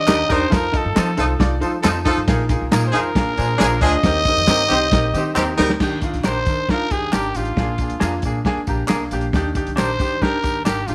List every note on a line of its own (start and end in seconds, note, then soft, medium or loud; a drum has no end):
0.00 0.34 D#5 loud
0.07 0.25 D#2 medium
0.07 0.15 G3 medium
0.07 0.21 D4 medium
0.07 0.21 D#4 medium
0.07 0.15 D#4 loud
0.07 0.21 G4 medium
0.07 0.22 G4 loud
0.07 0.15 A#4 loud
0.07 0.21 A#4 medium
0.07 0.22 A#4 medium
0.07 snare loud
0.07 clap loud
0.07 closed hi-hat medium
0.07 tambourine loud
0.29 0.47 E2 loud
0.29 0.44 G3 medium
0.29 0.43 D4 loud
0.29 0.43 D#4 medium
0.29 0.44 D#4 loud
0.29 0.43 G4 medium
0.29 0.43 A#4 loud
0.29 0.44 A#4 loud
0.29 0.55 C5 medium
0.29 kick medium
0.29 snare soft
0.29 closed hi-hat medium
0.29 tambourine medium
0.50 0.77 F2 loud
0.50 0.64 D#4 medium
0.50 0.64 F4 medium
0.50 0.65 A4 medium
0.50 0.79 A#4 loud
0.50 0.65 C5 loud
0.50 kick loud
0.50 snare loud
0.50 closed hi-hat medium
0.50 tambourine medium
0.72 0.86 D#4 medium
0.72 0.87 F4 medium
0.72 0.87 A4 medium
0.72 0.87 D#5 medium
0.72 kick medium
0.72 closed hi-hat medium
0.77 1.42 A4 medium
0.85 0.94 G2 loud
0.95 1.14 F3 loud
0.95 1.09 C4 medium
0.95 1.09 D#4 medium
0.95 1.10 D#4 medium
0.95 1.09 F4 medium
0.95 1.09 A4 medium
0.95 1.10 A4 loud
0.95 1.10 C5 medium
0.95 snare loud
0.95 clap loud
0.95 closed hi-hat medium
0.95 tambourine loud
1.17 1.35 C2 loud
1.17 1.25 F3 medium
1.17 1.31 D#4 loud
1.17 1.25 D#4 loud
1.17 1.31 F4 medium
1.17 1.31 A4 medium
1.17 1.25 A4 loud
1.17 1.31 C5 loud
1.17 closed hi-hat medium
1.17 tambourine medium
1.39 1.57 C2 loud
1.39 1.53 D#4 medium
1.39 1.53 F4 medium
1.39 1.54 A4 medium
1.39 1.53 D5 loud
1.39 kick medium
1.39 snare loud
1.39 closed hi-hat medium
1.39 tambourine soft
1.60 1.71 F3 medium
1.60 1.80 F3 medium
1.60 1.75 D#4 medium
1.60 1.71 D#4 medium
1.60 1.75 F4 medium
1.60 1.75 A4 medium
1.60 1.71 A4 medium
1.60 1.75 C5 loud
1.60 closed hi-hat medium
1.60 tambourine medium
1.83 2.10 F2 medium
1.83 1.90 F3 loud
1.83 1.97 C4 medium
1.83 1.90 D#4 loud
1.83 1.97 D#4 medium
1.83 1.98 D#4 medium
1.83 1.97 F4 medium
1.83 1.90 A4 loud
1.83 1.97 A4 medium
1.83 1.98 A4 loud
1.83 1.98 C5 loud
1.83 snare loud
1.83 clap loud
1.83 closed hi-hat medium
1.83 tambourine loud
2.05 2.20 F3 loud
2.05 2.19 D#4 medium
2.05 2.19 D#4 loud
2.05 2.19 F4 loud
2.05 2.19 A4 loud
2.05 2.19 C5 loud
2.05 kick medium
2.05 snare soft
2.05 closed hi-hat medium
2.05 tambourine medium
2.17 2.26 G2 loud
2.27 2.53 A#1 loud
2.27 2.90 A#2 medium
2.27 2.41 D#4 loud
2.27 2.41 F4 loud
2.27 2.42 G#4 loud
2.27 2.42 A#4 loud
2.27 kick loud
2.27 snare loud
2.27 closed hi-hat loud
2.27 tambourine medium
2.49 2.63 D#4 medium
2.49 2.63 F4 medium
2.49 2.63 G#4 medium
2.49 2.64 A#4 loud
2.49 kick medium
2.49 closed hi-hat medium
2.49 tambourine soft
2.61 2.70 C2 medium
2.71 2.89 A#2 loud
2.71 2.85 D#4 medium
2.71 2.86 D#4 medium
2.71 2.85 F4 medium
2.71 2.86 G#4 medium
2.71 2.85 A#4 loud
2.71 2.86 A#4 medium
2.71 snare loud
2.71 clap loud
2.71 closed hi-hat medium
2.71 tambourine loud
2.87 2.98 C5 medium
2.92 3.00 F3 loud
2.92 3.00 D#4 medium
2.92 3.07 D#4 loud
2.92 3.07 F4 medium
2.92 3.00 G#4 loud
2.92 3.07 G#4 medium
2.92 3.82 A#4 medium
2.92 3.08 C5 loud
2.92 closed hi-hat medium
2.92 tambourine medium
3.15 3.33 A#1 loud
3.15 3.79 A#2 medium
3.15 3.30 D4 medium
3.15 3.30 F4 medium
3.15 3.30 G#4 medium
3.15 3.30 A#4 medium
3.15 kick medium
3.15 snare loud
3.15 closed hi-hat medium
3.15 tambourine soft
3.37 3.56 A#2 loud
3.37 3.47 F3 medium
3.37 3.47 D4 medium
3.37 3.52 D4 medium
3.37 3.52 F4 medium
3.37 3.47 G#4 medium
3.37 3.52 G#4 medium
3.37 3.52 C5 medium
3.37 closed hi-hat medium
3.37 tambourine medium
3.58 3.78 A#1 medium
3.58 3.66 F3 loud
3.58 3.66 D4 loud
3.58 3.73 D4 medium
3.58 3.74 D4 medium
3.58 3.74 F4 medium
3.58 3.66 G#4 loud
3.58 3.73 G#4 medium
3.58 3.74 G#4 medium
3.58 3.73 A#4 medium
3.58 3.74 C5 loud
3.58 snare loud
3.58 clap loud
3.58 closed hi-hat medium
3.58 tambourine loud
3.81 3.99 D2 medium
3.81 3.96 F3 medium
3.81 3.96 D4 medium
3.81 3.95 D4 loud
3.81 3.95 F4 medium
3.81 3.95 G#4 loud
3.81 3.96 G#4 medium
3.81 3.96 C5 loud
3.81 5.55 D#5 loud
3.81 kick medium
3.81 snare soft
3.81 closed hi-hat medium
3.81 tambourine medium
4.03 4.30 D#2 loud
4.03 4.67 D#3 medium
4.03 4.18 C4 loud
4.03 4.18 D#4 medium
4.03 4.18 G4 medium
4.03 4.18 A#4 loud
4.03 kick loud
4.03 snare loud
4.03 closed hi-hat loud
4.03 tambourine medium
4.25 4.40 C4 medium
4.25 4.40 D#4 medium
4.25 4.40 G4 medium
4.25 4.41 A#4 medium
4.25 kick medium
4.25 closed hi-hat medium
4.25 tambourine soft
4.37 4.46 F2 medium
4.47 4.65 G2 loud
4.47 4.61 C4 medium
4.47 4.62 C4 medium
4.47 4.62 D#4 medium
4.47 4.62 G4 medium
4.47 4.62 A#4 loud
4.47 4.63 A#4 loud
4.47 snare loud
4.47 clap loud
4.47 closed hi-hat medium
4.47 tambourine loud
4.68 4.87 C2 loud
4.68 4.76 D#3 medium
4.68 4.76 C4 medium
4.68 4.84 C4 loud
4.68 4.84 D#4 loud
4.68 4.76 G4 loud
4.68 4.84 G4 loud
4.68 4.85 C5 loud
4.68 closed hi-hat medium
4.68 tambourine medium
4.92 5.09 A#1 loud
4.92 5.06 C4 medium
4.92 5.06 D#4 medium
4.92 5.06 G4 medium
4.92 5.06 A#4 loud
4.92 kick medium
4.92 snare loud
4.92 closed hi-hat medium
4.92 tambourine soft
5.13 5.23 D#3 medium
5.13 5.31 D#3 medium
5.13 5.23 C4 medium
5.13 5.29 C4 medium
5.13 5.29 D#4 medium
5.13 5.23 G4 medium
5.13 5.29 G4 medium
5.13 closed hi-hat medium
5.13 tambourine medium
5.17 5.29 C5 loud
5.34 5.53 D#2 loud
5.34 5.42 D#3 loud
5.34 5.42 C4 loud
5.34 5.49 C4 medium
5.34 5.50 C4 medium
5.34 5.50 D#4 medium
5.34 5.42 G4 loud
5.34 5.50 G4 medium
5.34 5.50 A#4 medium
5.34 snare medium
5.34 clap loud
5.34 tambourine loud
5.38 5.51 C5 loud
5.57 5.76 D2 medium
5.57 5.72 G3 medium
5.57 5.72 C4 loud
5.57 5.71 D#4 medium
5.57 5.72 D#4 loud
5.57 5.72 G4 loud
5.57 5.71 A#4 loud
5.57 5.72 A#4 loud
5.57 snare medium
5.57 tambourine medium
5.70 snare medium
5.80 6.06 D#2 medium
5.80 6.43 D#3 medium
5.80 5.94 D4 loud
5.80 5.94 D#4 medium
5.80 5.95 G4 loud
5.80 kick medium
5.80 snare loud
5.80 crash medium
5.80 tambourine soft
6.01 6.16 D4 medium
6.01 6.16 D#4 medium
6.01 6.16 F4 medium
6.01 kick medium
6.01 closed hi-hat medium
6.01 tambourine soft
6.13 6.22 C2 medium
6.13 closed hi-hat medium
6.24 6.42 A#1 medium
6.24 6.38 D4 medium
6.24 6.38 D#4 medium
6.24 6.38 G4 medium
6.24 6.38 A#4 medium
6.24 6.72 C5 loud
6.24 snare loud
6.24 clap medium
6.24 tambourine medium
6.46 6.64 D#3 medium
6.46 6.60 D4 medium
6.46 6.61 D#4 medium
6.46 6.61 A#4 medium
6.46 kick medium
6.46 closed hi-hat medium
6.46 tambourine medium
6.69 6.83 D4 medium
6.69 6.83 D#4 medium
6.69 6.84 F4 loud
6.69 6.93 A#4 loud
6.69 kick medium
6.69 snare medium
6.69 tambourine soft
6.81 muted upright bass stroke soft
6.90 7.08 D#2 medium
6.90 7.05 D4 medium
6.90 7.05 D#4 medium
6.90 7.05 G4 medium
6.90 7.14 G#4 medium
6.90 kick medium
6.90 closed hi-hat medium
6.90 tambourine medium
7.12 7.30 G#1 medium
7.12 7.26 D4 medium
7.12 7.27 D4 medium
7.12 7.27 D#4 medium
7.12 7.38 G4 medium
7.12 7.27 G4 medium
7.12 7.27 A#4 medium
7.12 snare loud
7.12 clap loud
7.12 tambourine loud
7.35 7.52 A1 medium
7.35 7.49 D4 medium
7.35 7.49 D#4 medium
7.35 8.24 F4 medium
7.35 7.50 G4 medium
7.35 snare soft
7.35 closed hi-hat medium
7.35 tambourine medium
7.45 closed hi-hat soft
7.56 7.82 A#1 medium
7.56 8.20 A#2 medium
7.56 7.71 A#3 medium
7.56 7.71 D4 medium
7.56 7.71 G#4 medium
7.56 kick loud
7.56 snare loud
7.56 tambourine soft
7.78 7.93 A#3 medium
7.78 7.93 D4 medium
7.78 7.94 G#4 medium
7.78 kick medium
7.78 closed hi-hat medium
7.78 tambourine soft
7.90 7.99 D2 medium
7.90 closed hi-hat medium
8.00 8.19 F2 medium
8.00 8.15 A#3 medium
8.00 8.14 D4 medium
8.00 8.15 D4 medium
8.00 8.16 F4 medium
8.00 8.14 G#4 medium
8.00 8.15 A#4 medium
8.00 snare loud
8.00 clap medium
8.00 tambourine medium
8.22 8.40 A#2 loud
8.22 8.37 A#3 medium
8.22 8.38 D4 medium
8.22 kick medium
8.22 closed hi-hat medium
8.22 tambourine medium
8.26 8.38 G#4 medium
8.45 8.59 A#3 loud
8.45 8.59 D4 loud
8.45 8.59 G#4 loud
8.45 kick medium
8.45 snare medium
8.45 tambourine soft
8.57 muted upright bass stroke soft
8.67 8.85 A#1 medium
8.67 8.81 A#3 medium
8.67 8.81 D4 medium
8.67 8.81 G4 medium
8.67 8.88 A#5 medium
8.67 kick medium
8.67 closed hi-hat medium
8.67 tambourine medium
8.87 9.07 C2 medium
8.87 9.03 A#3 medium
8.87 9.02 D4 medium
8.87 9.03 D4 medium
8.87 9.02 G#4 loud
8.87 9.03 A#4 medium
8.87 9.00 G#5 medium
8.87 snare loud
8.87 clap loud
8.87 tambourine loud
9.01 9.32 F5 medium
9.11 9.29 A#1 medium
9.11 9.25 A#3 medium
9.11 9.25 D4 medium
9.11 9.26 G4 loud
9.11 snare soft
9.11 closed hi-hat medium
9.11 tambourine medium
9.21 closed hi-hat soft
9.33 9.59 D#2 loud
9.33 9.96 D#3 medium
9.33 9.48 D4 loud
9.33 9.48 D#4 loud
9.33 9.48 G4 loud
9.33 kick loud
9.33 snare loud
9.33 tambourine soft
9.55 9.69 D4 medium
9.55 9.69 D#4 medium
9.55 9.69 G4 loud
9.55 kick medium
9.55 closed hi-hat medium
9.55 tambourine soft
9.67 9.75 C2 medium
9.67 closed hi-hat medium
9.76 9.95 A#1 medium
9.76 9.90 D4 medium
9.76 9.91 D4 medium
9.76 9.91 D#4 medium
9.76 9.91 G4 medium
9.76 9.92 G4 medium
9.76 9.91 A#4 medium
9.76 10.24 C5 loud
9.76 snare loud
9.76 clap medium
9.76 tambourine loud
9.99 10.17 D#3 medium
9.99 10.13 D4 medium
9.99 10.14 D#4 medium
9.99 10.14 G4 medium
9.99 kick medium
9.99 closed hi-hat medium
9.99 tambourine medium
10.22 10.35 D4 loud
10.22 10.35 D#4 medium
10.22 10.35 G4 loud
10.22 10.65 A#4 loud
10.22 kick medium
10.22 snare medium
10.22 tambourine soft
10.32 muted upright bass stroke soft
10.43 10.61 D#2 medium
10.43 10.57 D4 medium
10.43 10.57 D#4 medium
10.43 10.57 G4 medium
10.43 kick medium
10.43 closed hi-hat medium
10.43 tambourine medium
10.65 10.83 G#1 medium
10.65 10.79 D4 medium
10.65 10.79 D#4 medium
10.65 10.89 G4 medium
10.65 10.80 G4 medium
10.65 10.80 A#4 medium
10.65 snare loud
10.65 clap loud
10.65 tambourine loud
10.87 10.95 A1 medium
10.87 10.95 D4 medium
10.87 10.95 D#4 medium
10.87 10.95 F4 medium
10.87 10.95 G4 medium
10.87 snare soft
10.87 closed hi-hat medium
10.87 tambourine medium